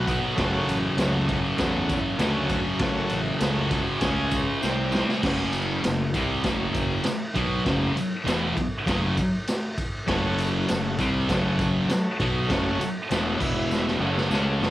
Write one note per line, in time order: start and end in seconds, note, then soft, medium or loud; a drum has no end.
0.00 0.16 B1 loud
0.00 0.19 F#4 medium
0.00 0.19 B4 medium
0.00 0.20 F#5 loud
0.07 0.36 B2 medium
0.07 0.38 F#3 medium
0.07 0.37 B3 medium
0.07 kick medium
0.07 ride medium
0.07 tambourine medium
0.35 0.57 F#1 medium
0.35 0.96 F#2 medium
0.35 0.98 C#3 medium
0.35 0.98 F#3 medium
0.35 0.78 A4 loud
0.35 0.78 C#5 loud
0.35 0.79 F#5 loud
0.35 kick loud
0.35 snare loud
0.35 ride loud
0.68 0.87 A1 medium
0.68 ride medium
0.68 tambourine medium
0.97 1.36 C#2 medium
0.97 1.27 F#2 medium
0.97 1.28 C#3 medium
0.97 1.29 F#3 medium
0.97 1.39 A4 medium
0.97 1.39 C#5 medium
0.97 1.40 F#5 medium
0.97 snare loud
0.97 ride loud
0.97 tambourine medium
1.28 1.57 F#2 medium
1.28 1.58 C#3 loud
1.28 1.58 F#3 loud
1.28 kick medium
1.28 ride medium
1.28 tambourine soft
1.56 1.98 E2 medium
1.56 2.18 F#2 medium
1.56 2.19 C#3 medium
1.56 2.20 F#3 loud
1.56 1.99 A4 loud
1.56 2.00 C#5 medium
1.56 2.01 F#5 loud
1.56 kick loud
1.56 snare loud
1.56 ride medium
1.56 tambourine medium
1.89 kick medium
1.89 ride medium
1.89 tambourine medium
2.18 2.58 D2 loud
2.18 2.49 F#2 medium
2.18 2.50 C#3 medium
2.18 2.51 F#3 loud
2.18 2.61 A4 medium
2.18 2.61 C#5 medium
2.18 2.61 F#5 loud
2.18 snare loud
2.18 ride loud
2.18 tambourine medium
2.49 2.79 F#2 medium
2.49 2.80 C#3 medium
2.49 2.81 F#3 medium
2.49 kick medium
2.49 ride medium
2.49 tambourine medium
2.79 3.00 F#1 loud
2.79 3.40 F#2 loud
2.79 3.40 C#3 loud
2.79 3.41 F#3 loud
2.79 3.21 A4 loud
2.79 3.22 C#5 loud
2.79 3.22 F#5 loud
2.79 kick loud
2.79 snare loud
2.79 ride loud
2.79 tambourine soft
3.09 3.30 A1 loud
3.09 ride medium
3.09 tambourine medium
3.39 3.80 C#2 loud
3.39 3.69 F#2 medium
3.39 3.70 C#3 medium
3.39 3.71 F#3 medium
3.39 3.82 A4 medium
3.39 3.82 C#5 medium
3.39 3.82 F#5 loud
3.39 snare loud
3.39 ride loud
3.39 tambourine medium
3.71 4.00 F#2 medium
3.71 4.00 C#3 medium
3.71 4.01 F#3 loud
3.71 kick medium
3.71 ride medium
3.71 tambourine soft
3.98 4.40 C#2 medium
3.98 4.60 C#3 loud
3.98 4.61 G#3 loud
3.98 4.42 G#4 medium
3.98 4.43 C#5 medium
3.98 4.43 G#5 loud
3.98 kick loud
3.98 snare loud
3.98 ride loud
3.98 tambourine medium
4.03 4.61 C#4 loud
4.31 kick medium
4.31 ride medium
4.31 tambourine medium
4.62 5.02 C2 medium
4.62 4.91 C3 loud
4.62 4.92 G3 loud
4.62 4.92 C4 loud
4.62 5.04 G4 loud
4.62 5.04 C5 medium
4.62 5.04 G5 loud
4.62 snare medium
4.62 tambourine loud
4.92 5.21 C3 medium
4.92 5.22 G3 medium
4.92 5.22 C4 loud
4.92 snare loud
4.92 tambourine medium
5.09 snare loud
5.23 5.80 F#1 medium
5.23 5.83 F#2 loud
5.23 5.83 C#3 medium
5.23 5.84 F#3 loud
5.23 kick loud
5.23 snare loud
5.23 crash loud
5.53 ride medium
5.53 tambourine medium
5.84 6.12 F#1 medium
5.84 6.08 F#2 medium
5.84 6.09 C#3 medium
5.84 snare loud
5.84 ride loud
5.84 tambourine medium
6.14 6.42 C2 loud
6.14 6.44 C3 loud
6.14 6.44 G3 loud
6.14 6.44 C4 loud
6.14 kick medium
6.14 ride medium
6.14 tambourine medium
6.43 7.01 F#1 medium
6.43 7.04 F#2 medium
6.43 7.04 C#3 loud
6.43 7.05 F#3 loud
6.43 kick loud
6.43 snare loud
6.43 ride loud
6.43 tambourine medium
6.74 kick medium
6.74 ride medium
6.74 tambourine medium
7.03 muted distorted electric guitar stroke medium
7.03 muted fingered electric bass stroke soft
7.03 snare loud
7.03 ride loud
7.03 tambourine medium
7.35 7.64 B1 loud
7.35 7.65 B2 medium
7.35 7.65 F#3 loud
7.35 7.65 B3 medium
7.35 kick medium
7.35 ride medium
7.65 7.94 F#1 medium
7.65 7.95 F#2 medium
7.65 7.95 C#3 medium
7.65 7.96 F#3 loud
7.65 kick loud
7.65 snare loud
7.65 ride loud
7.96 muted fingered electric bass stroke soft
7.96 muted distorted electric guitar stroke medium
7.96 ride medium
7.96 tambourine medium
8.24 8.54 E1 loud
8.24 8.55 E2 medium
8.24 8.55 B2 medium
8.24 8.55 E3 loud
8.24 ride loud
8.24 tambourine loud
8.28 snare loud
8.57 muted distorted electric guitar stroke medium
8.57 muted fingered electric bass stroke soft
8.57 kick medium
8.57 ride medium
8.86 9.15 F#1 medium
8.86 9.16 F#2 medium
8.86 9.16 C#3 medium
8.86 9.17 F#3 medium
8.86 kick loud
8.86 snare loud
8.86 ride loud
8.86 tambourine medium
9.17 kick medium
9.17 ride medium
9.17 tambourine medium
9.47 snare loud
9.47 ride loud
9.47 tambourine loud
9.78 kick medium
9.78 ride medium
10.07 10.64 F#1 loud
10.07 10.67 F#2 loud
10.07 10.67 C#3 loud
10.07 10.68 F#3 loud
10.07 10.49 A4 loud
10.07 10.49 C#5 loud
10.07 10.50 F#5 loud
10.07 kick loud
10.07 snare loud
10.07 ride loud
10.38 ride medium
10.38 tambourine medium
10.68 10.97 F#1 medium
10.68 10.93 F#2 medium
10.68 10.93 C#3 medium
10.68 11.09 A4 medium
10.68 11.09 C#5 medium
10.68 11.10 F#5 loud
10.68 snare loud
10.68 ride loud
10.68 tambourine loud
10.98 11.26 C2 loud
10.98 11.28 C3 loud
10.98 11.29 G3 loud
10.98 11.29 C4 loud
10.98 kick medium
10.98 ride medium
10.98 tambourine medium
11.28 11.85 F#1 loud
11.28 11.88 F#2 loud
11.28 11.89 C#3 loud
11.28 11.89 F#3 loud
11.28 11.70 A4 medium
11.28 11.70 C#5 medium
11.28 11.71 F#5 loud
11.28 kick loud
11.28 snare loud
11.28 ride loud
11.28 tambourine medium
11.59 kick medium
11.59 ride medium
11.59 tambourine medium
11.88 12.30 A4 loud
11.88 12.30 C#5 medium
11.88 12.30 F#5 loud
11.88 muted distorted electric guitar stroke medium
11.88 muted fingered electric bass stroke soft
11.88 snare loud
11.88 ride loud
11.88 tambourine medium
12.20 12.47 B1 loud
12.20 12.49 B2 medium
12.20 12.49 F#3 medium
12.20 12.49 B3 loud
12.20 kick medium
12.20 ride medium
12.47 12.78 F#1 loud
12.47 12.79 F#2 medium
12.47 12.79 C#3 loud
12.47 12.90 A4 loud
12.47 12.90 C#5 loud
12.47 12.90 F#5 loud
12.47 kick loud
12.47 snare loud
12.47 ride loud
12.47 tambourine soft
12.52 12.80 F#3 loud
12.80 muted distorted electric guitar stroke medium
12.80 muted fingered electric bass stroke soft
12.80 ride medium
12.80 tambourine medium
13.09 13.39 E1 loud
13.09 13.39 E2 medium
13.09 13.40 B2 medium
13.09 13.40 E3 loud
13.09 13.39 A4 medium
13.09 13.40 C#5 medium
13.09 13.40 F#5 medium
13.09 snare loud
13.09 ride loud
13.09 tambourine medium
13.38 13.97 E1 medium
13.38 14.00 E2 medium
13.38 13.87 E4 medium
13.38 13.88 B4 medium
13.38 13.88 E5 loud
13.38 kick loud
13.38 crash loud
13.42 14.00 B2 loud
13.42 14.01 E3 loud
13.42 tambourine medium
13.71 snare medium
13.71 tambourine medium
13.88 snare medium
13.98 14.28 F#1 loud
13.98 14.30 F#2 medium
13.98 14.30 C#3 loud
13.98 14.70 F#4 medium
13.98 14.70 A4 medium
13.98 14.70 C#5 loud
14.02 14.31 F#3 loud
14.18 snare medium
14.30 14.59 C#2 loud
14.30 14.60 C#3 medium
14.30 14.61 G#3 loud
14.30 14.61 C#4 loud
14.30 snare medium
14.30 tambourine loud
14.61 14.70 F#1 loud
14.61 14.70 F#2 medium
14.61 14.70 C#3 medium
14.61 14.70 F#3 loud
14.61 snare loud
14.61 tambourine soft